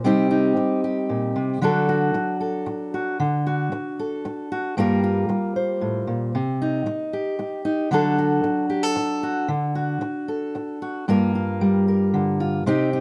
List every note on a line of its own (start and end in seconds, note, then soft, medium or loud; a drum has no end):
0.04 0.55 C3 medium
0.04 1.59 G3 medium
0.04 1.59 C4 medium
0.04 0.29 D#4 medium
0.04 0.83 G4 medium
0.31 1.59 D#4 medium
0.56 muted steel-string acoustic guitar stroke medium
0.84 1.62 G4 soft
1.09 1.35 A#2 medium
1.36 1.61 C3 medium
1.61 2.14 D3 medium
1.61 3.16 F#3 medium
1.61 4.78 D4 medium
1.61 1.88 F#4 medium
1.61 2.40 A4 medium
1.89 2.93 F#4 medium
2.14 muted steel-string acoustic guitar stroke medium
2.41 3.16 A4 soft
2.66 muted steel-string acoustic guitar stroke medium
2.94 3.17 F#4 medium
3.20 3.71 D3 medium
3.46 4.51 F#4 medium
3.72 muted steel-string acoustic guitar stroke medium
3.99 4.74 A4 medium
4.25 muted steel-string acoustic guitar stroke medium
4.52 4.74 F#4 medium
4.77 5.28 G2 medium
4.77 6.32 G3 medium
4.77 6.35 A#3 medium
4.77 5.02 F4 medium
4.77 5.56 A#4 medium
5.04 6.31 F4 medium
5.29 muted steel-string acoustic guitar stroke medium
5.56 6.31 C5 soft
5.81 6.07 A2 medium
6.07 6.34 A#2 medium
6.35 6.85 C3 medium
6.62 7.64 D#4 medium
6.86 muted steel-string acoustic guitar stroke medium
7.13 7.92 G4 soft
7.39 muted steel-string acoustic guitar stroke medium
7.65 7.88 D#4 medium
7.91 8.44 D3 medium
7.91 9.46 F#3 medium
7.91 11.08 D4 medium
7.91 8.18 F#4 medium
7.91 8.69 A4 medium
8.18 9.22 F#4 medium
8.44 muted steel-string acoustic guitar stroke medium
8.70 8.83 G4 medium
8.83 9.49 A4 soft
8.96 muted steel-string acoustic guitar stroke medium
9.23 9.46 F#4 medium
9.48 10.00 D3 medium
9.75 10.81 F#4 medium
10.01 muted steel-string acoustic guitar stroke medium
10.28 11.04 A4 soft
10.55 muted steel-string acoustic guitar stroke medium
10.82 11.05 F#4 soft
11.08 12.65 G2 medium
11.08 12.66 A#3 medium
11.08 11.34 F4 medium
11.08 11.87 A#4 medium
11.35 12.39 F4 soft
11.61 12.63 G3 medium
11.88 12.63 A#4 soft
12.14 12.62 D3 medium
12.40 12.63 F4 medium
12.66 13.00 C3 medium
12.66 13.00 C4 medium
12.66 12.92 D#4 medium
12.66 13.00 G4 medium
12.93 13.00 D#4 medium